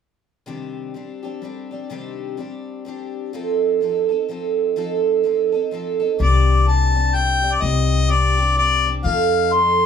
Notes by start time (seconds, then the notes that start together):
0.46 C3 D#3 G3 C4 D4 G4
0.94 G3 C4 D4 G4
1.23 G3 C4 D4 G4
1.42 G3 C4 D4 G4
1.71 G3 C4 D4 G4
1.90 C3 D#3 G3 C4 D4 G4
2.37 G3 C4 D4 G4
2.85 G3 C4 D4 G4
3.33 F3 C4 D#4 A4
3.81 F3 C4 D#4 A4
4.09 C4 D#4 A4
4.29 F3 C4 D#4 A4
4.76 F3 C4 D#4 A4
5.24 F3 C4 D#4 A4
5.52 C4 D#4 A4
5.71 F3 C4 D#4 A4
6.00 C4 D#4 A4
6.19 C2 C3 D#3 G3 C4 D4 G4 D5
6.67 G3 C4 D4 G4 A5
6.94 G3 C4 D4 G4
7.13 G3 C4 D4 G4 G5
7.42 G3 C4 D4 G4
7.53 D5
7.61 C2 C3 D#3 G3 C4 G4 D#5
8.08 G3 C4 D4 G4 D5
8.37 G3 C4 D4 G4
8.56 G3 C4 D4 G4 D5
8.85 G3 C4 D4 G4
9.03 F2 F3 C4 D#4 A4 F5
9.51 F3 C4 D#4 A4 C6